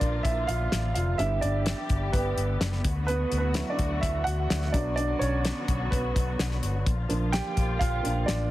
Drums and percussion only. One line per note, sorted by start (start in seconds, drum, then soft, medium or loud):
0.01 kick medium
0.01 closed hi-hat medium
0.25 kick medium
0.25 closed hi-hat medium
0.49 closed hi-hat medium
0.72 snare medium
0.72 closed hi-hat medium
0.96 closed hi-hat medium
1.19 closed hi-hat medium
1.42 closed hi-hat medium
1.66 snare medium
1.66 closed hi-hat medium
1.89 kick medium
1.89 closed hi-hat medium
2.13 kick medium
2.13 closed hi-hat medium
2.38 closed hi-hat medium
2.61 snare loud
2.61 closed hi-hat medium
2.72 snare soft
2.84 kick medium
2.84 closed hi-hat medium
3.08 closed hi-hat medium
3.32 closed hi-hat medium
3.54 snare medium
3.54 closed hi-hat medium
3.79 kick medium
3.79 closed hi-hat medium
4.03 kick medium
4.03 closed hi-hat medium
4.27 closed hi-hat medium
4.50 snare loud
4.50 closed hi-hat medium
4.62 snare soft
4.74 kick medium
4.74 closed hi-hat medium
4.98 closed hi-hat medium
5.22 closed hi-hat medium
5.45 snare medium
5.45 closed hi-hat medium
5.68 kick medium
5.68 closed hi-hat medium
5.92 kick medium
5.92 closed hi-hat medium
6.16 kick medium
6.16 closed hi-hat medium
6.39 snare loud
6.39 closed hi-hat medium
6.51 snare soft
6.63 closed hi-hat medium
6.86 kick medium
6.86 closed hi-hat medium
7.10 closed hi-hat medium
7.33 snare loud
7.33 closed hi-hat medium
7.57 kick medium
7.57 closed hi-hat medium
7.81 kick medium
7.81 closed hi-hat medium
8.05 closed hi-hat medium
8.28 snare loud
8.28 closed hi-hat medium